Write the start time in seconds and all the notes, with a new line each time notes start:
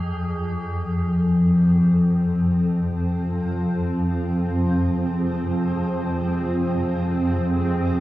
Already playing: F2 F3 G#4
0.33 F2 F3 C4
2.16 F4
3.26 C5
3.89 G#4